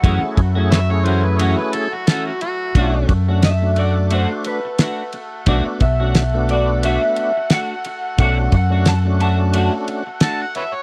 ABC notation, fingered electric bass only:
X:1
M:4/4
L:1/16
Q:"Swing 16ths" 1/4=88
K:Bdor
V:1 name="Fingered electric bass" clef=bass
F,, z F,,8 z6 | B,,,2 F,,8 z6 | B,,, z B,,,8 z6 | B,,,2 F,,8 z6 |]